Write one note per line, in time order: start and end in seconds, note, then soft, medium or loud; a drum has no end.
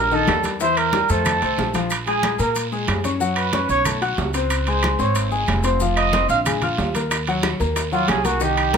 0.00 0.24 A#1 medium
0.00 0.16 A#4 loud
0.11 0.25 D#3 medium
0.11 0.25 D#4 medium
0.11 0.46 A4 loud
0.11 0.25 D#5 medium
0.11 high bongo soft
0.11 high conga soft
0.11 maracas soft
0.27 1.04 E2 medium
0.27 0.54 G3 medium
0.27 0.55 G4 medium
0.27 0.55 A#4 medium
0.27 high bongo soft
0.27 low bongo medium
0.27 high conga medium
0.27 high timbale medium
0.27 low timbale medium
0.27 short guiro medium
0.27 claves medium
0.27 maracas soft
0.44 high conga medium
0.44 high timbale medium
0.44 short guiro medium
0.44 maracas medium
0.60 0.87 E3 medium
0.60 0.88 E4 medium
0.60 0.79 C5 loud
0.60 0.87 E5 medium
0.60 high bongo medium
0.60 high conga soft
0.60 long guiro medium
0.60 maracas medium
0.77 1.11 A#4 loud
0.77 high conga soft
0.77 high timbale medium
0.77 claves medium
0.77 maracas soft
0.93 1.06 G3 medium
0.93 1.07 G4 medium
0.93 1.07 A#4 medium
0.93 high bongo medium
0.93 high conga medium
0.93 high timbale medium
0.93 low timbale medium
0.93 short guiro medium
0.93 maracas soft
1.09 1.40 F2 loud
1.09 1.36 A3 medium
1.09 1.75 A4 loud
1.09 1.36 A4 medium
1.09 1.36 C5 medium
1.09 high bongo soft
1.09 high conga soft
1.09 short guiro medium
1.09 maracas medium
1.25 high bongo medium
1.25 high conga soft
1.25 low conga medium
1.25 high timbale loud
1.25 long guiro medium
1.25 claves medium
1.25 maracas medium
1.42 1.57 C2 medium
1.42 1.69 A3 medium
1.42 1.69 A4 medium
1.42 1.69 C5 medium
1.42 high bongo soft
1.42 high conga soft
1.42 high timbale medium
1.42 maracas soft
1.58 2.34 A#1 medium
1.58 high bongo soft
1.58 low bongo medium
1.58 high conga medium
1.58 low timbale medium
1.58 short guiro medium
1.58 maracas soft
1.74 1.88 F3 medium
1.74 1.88 F4 medium
1.74 1.88 F5 medium
1.74 high conga medium
1.74 high timbale medium
1.74 short guiro medium
1.74 maracas medium
1.90 high conga soft
1.90 high timbale loud
1.90 long guiro medium
1.90 claves medium
1.90 maracas medium
2.07 2.34 G#3 medium
2.07 2.40 G#4 medium
2.07 2.34 G#4 medium
2.07 2.34 G#5 medium
2.07 high conga soft
2.07 high timbale medium
2.07 maracas soft
2.23 high conga loud
2.23 high timbale medium
2.23 low timbale medium
2.23 short guiro medium
2.23 claves medium
2.23 maracas soft
2.39 2.85 A#2 medium
2.39 2.66 A#3 medium
2.39 2.55 A#4 medium
2.39 2.66 A#4 medium
2.39 2.67 A#5 medium
2.39 high conga soft
2.39 short guiro medium
2.39 maracas medium
2.55 high conga soft
2.55 high timbale medium
2.55 long guiro medium
2.55 maracas medium
2.72 2.99 G#3 medium
2.72 2.99 G#4 medium
2.72 2.99 G#5 medium
2.72 high conga soft
2.72 maracas soft
2.88 3.64 F#2 medium
2.88 high conga medium
2.88 high timbale loud
2.88 low timbale medium
2.88 short guiro medium
2.88 claves medium
2.88 maracas soft
3.04 3.18 C#4 medium
3.04 3.18 C#5 medium
3.04 3.18 C#6 medium
3.04 high conga medium
3.04 high timbale medium
3.04 short guiro medium
3.04 maracas medium
3.20 3.47 F#3 medium
3.20 3.47 F#4 medium
3.20 3.47 F#5 medium
3.20 high conga soft
3.20 long guiro medium
3.20 maracas medium
3.36 3.67 B4 medium
3.36 high conga soft
3.36 high timbale medium
3.36 claves medium
3.36 maracas soft
3.53 3.80 C#4 medium
3.53 3.80 C#5 medium
3.53 3.80 C#6 medium
3.53 high conga loud
3.53 high timbale medium
3.53 low timbale medium
3.53 short guiro medium
3.53 maracas soft
3.69 4.15 B1 medium
3.69 3.85 C#5 loud
3.69 high conga soft
3.69 short guiro medium
3.69 maracas medium
3.85 3.99 A3 medium
3.85 3.99 A4 medium
3.85 3.99 A5 medium
3.85 high conga soft
3.85 low conga medium
3.85 high timbale loud
3.85 long guiro medium
3.85 claves medium
3.85 maracas medium
4.02 4.28 F#4 medium
4.02 4.29 F#5 medium
4.02 4.29 F#6 medium
4.02 high conga soft
4.02 high timbale medium
4.02 maracas soft
4.17 4.94 C#2 medium
4.17 high conga medium
4.17 low timbale medium
4.17 short guiro medium
4.17 maracas soft
4.34 4.61 C4 medium
4.34 4.61 C5 medium
4.34 4.62 C6 medium
4.34 high timbale medium
4.34 short guiro medium
4.34 maracas medium
4.50 high conga soft
4.50 high timbale medium
4.50 long guiro medium
4.50 claves medium
4.50 maracas medium
4.67 4.94 G#3 medium
4.67 4.94 G#4 medium
4.67 5.02 C5 medium
4.67 4.94 G#5 medium
4.67 high conga soft
4.67 high timbale medium
4.67 maracas soft
4.82 high conga loud
4.82 high timbale loud
4.82 low timbale medium
4.82 short guiro medium
4.82 claves medium
4.82 maracas soft
4.99 5.45 G#1 medium
4.99 5.26 C4 medium
4.99 5.26 C5 medium
4.99 5.16 C#5 medium
4.99 5.26 C6 medium
4.99 high conga soft
4.99 short guiro medium
4.99 maracas medium
5.15 high conga soft
5.15 high timbale medium
5.15 long guiro medium
5.15 maracas medium
5.31 5.58 G#3 medium
5.31 5.59 G#4 medium
5.31 5.59 G#5 medium
5.31 high conga soft
5.31 maracas soft
5.47 6.24 F1 medium
5.47 high conga medium
5.47 high timbale medium
5.47 low timbale medium
5.47 short guiro medium
5.47 claves medium
5.47 maracas soft
5.63 5.78 C4 medium
5.63 5.78 C5 medium
5.63 5.78 C6 medium
5.63 high timbale medium
5.63 short guiro medium
5.63 maracas medium
5.80 6.08 F3 medium
5.80 6.08 F4 medium
5.80 6.08 F5 medium
5.80 high conga soft
5.80 long guiro medium
5.80 maracas medium
5.96 6.28 D#5 loud
5.96 high conga soft
5.96 high timbale medium
5.96 claves medium
5.96 maracas soft
6.13 6.40 C4 medium
6.13 6.40 C5 medium
6.13 6.41 C6 medium
6.13 high conga loud
6.13 high timbale medium
6.13 low timbale medium
6.13 short guiro medium
6.13 maracas soft
6.29 6.75 A#1 medium
6.29 6.40 F5 loud
6.29 high conga soft
6.29 short guiro medium
6.29 maracas medium
6.45 6.59 G#3 medium
6.45 6.60 G#4 medium
6.45 6.60 G#5 medium
6.45 high conga soft
6.45 low conga medium
6.45 high timbale loud
6.45 long guiro medium
6.45 claves medium
6.45 maracas medium
6.62 6.89 F4 medium
6.62 6.89 F5 medium
6.62 6.90 F6 medium
6.62 high conga soft
6.62 low conga medium
6.62 high timbale medium
6.62 maracas soft
6.78 7.54 D#2 medium
6.78 high conga medium
6.78 low timbale medium
6.78 short guiro medium
6.78 maracas soft
6.94 7.22 A#3 medium
6.94 7.22 A#4 medium
6.94 7.22 A#5 medium
6.94 high conga medium
6.94 high timbale medium
6.94 short guiro medium
6.94 maracas medium
7.11 high bongo medium
7.11 high conga soft
7.11 high timbale medium
7.11 long guiro medium
7.11 claves medium
7.11 maracas medium
7.27 7.55 F#3 medium
7.27 7.55 F#4 medium
7.27 7.55 F#5 medium
7.27 high conga soft
7.27 high timbale medium
7.27 maracas soft
7.43 high bongo medium
7.43 high conga loud
7.43 high timbale medium
7.43 low timbale medium
7.43 short guiro medium
7.43 claves medium
7.43 maracas soft
7.60 8.06 D#2 loud
7.60 7.87 A#3 medium
7.60 7.87 A#4 medium
7.60 7.87 A#5 medium
7.60 high bongo soft
7.60 high conga soft
7.60 short guiro medium
7.60 maracas medium
7.76 high bongo medium
7.76 high conga soft
7.76 high timbale medium
7.76 long guiro medium
7.76 maracas medium
7.92 8.19 F#3 medium
7.92 8.10 F4 medium
7.92 8.20 F#4 medium
7.92 8.20 F#5 medium
7.92 high bongo soft
7.92 high conga soft
7.92 maracas soft
8.08 8.77 C2 medium
8.08 8.27 G#4 loud
8.08 high bongo soft
8.08 low bongo medium
8.08 high conga medium
8.08 high timbale loud
8.08 low timbale medium
8.08 short guiro medium
8.08 claves medium
8.08 maracas soft
8.24 8.38 A#3 medium
8.24 8.44 F#4 medium
8.24 8.38 A#4 medium
8.24 8.38 A#5 medium
8.24 high conga medium
8.24 high timbale medium
8.24 short guiro medium
8.24 maracas medium
8.40 8.68 D#3 medium
8.40 8.68 D#4 medium
8.40 8.77 G4 loud
8.40 8.68 D#5 medium
8.40 high bongo medium
8.40 high conga soft
8.40 long guiro medium
8.40 maracas medium
8.57 high conga soft
8.57 high timbale medium
8.57 claves medium
8.57 maracas soft
8.73 8.77 A#3 medium
8.73 8.77 A#4 medium
8.73 8.77 A#5 medium
8.73 high bongo medium
8.73 high conga loud
8.73 high timbale medium
8.73 low timbale medium
8.73 short guiro medium
8.73 maracas soft